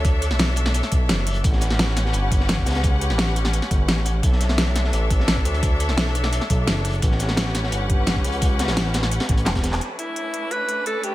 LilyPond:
<<
  \new Staff \with { instrumentName = "String section" } { \time 4/4 \key b \minor \tempo 4 = 172 <d' a' cis'' e''>1 | <cis' g' b' fis''>1~ | <cis' g' b' fis''>1 | <d' a' cis'' e''>1~ |
<d' a' cis'' e''>1 | <cis' g' b' fis''>1~ | <cis' g' b' fis''>1 | <a cis' d' e' b'>1 | }
  \new Staff \with { instrumentName = "Alto saxophone" } { \time 4/4 \key b \minor r1 | r1 | r1 | r1 |
r1 | r1 | r1 | r8 e'4. b'4 a'8 g'8 | }
  \new Staff \with { instrumentName = "Analog synth bass" } { \clef bass \time 4/4 \key b \minor d,8. b,,4. r16 b,,8 fis,,4 | a,,2 g,,4. cis,8~ | cis,8. a,,4. r16 g,,8 a,,4 | b,,2 a,,4. d,8~ |
d,8. b,,4. r16 b,,8 fis,,4 | a,,2 g,,4. cis,8~ | cis,8. a,,4. r16 a,,8 e,,4 | r1 | }
  \new DrumStaff \with { instrumentName = "Drums" } \drummode { \time 4/4 <hh bd>8 hh16 sn16 <hh sn>16 sn16 hh16 sn16 hh16 sn16 <hh bd>8 <hh sn>8 <hh hho>16 hh16 | <hh bd>16 sn16 <hh sn>16 sn16 <hh sn>16 sn16 <hh sn>16 sn16 hh8 <hh bd>16 sn16 <hh sn>16 bd16 <hh sn>32 <hh sn>32 <hh sn>16 | <hh bd>8 hh16 sn16 <hh sn>16 sn16 hh16 sn16 hh16 sn16 <hh bd>8 <hh sn>8 hh8 | <hh bd>16 sn16 <hh sn>16 sn16 <hh sn>16 sn16 <hh sn>16 sn16 hh8 <hh bd>16 sn16 <hh sn>16 bd16 hh16 hh16 |
<hh bd>8 hh16 sn16 <hh sn>16 sn16 hh16 sn16 hh16 sn16 <hh bd>8 <hh sn>8 <hh hho>16 hh16 | <hh bd>16 sn16 <hh sn>16 sn16 <hh sn>16 sn16 <hh sn>16 sn16 hh8 <hh bd>8 <hh sn>16 bd16 hh16 hh16 | <hh bd>8 <hh sn>16 <hh sn>16 <hh sn>16 sn16 <hh sn>16 sn16 hh16 <hh sn>16 <hh bd sn>16 hh16 <hc hh sn>16 <hh bd sn>16 <hh sn>16 <hc hh sn>16 | hh8 hh8 hh8 hh8 hh8 hh8 hh8 hh8 | }
>>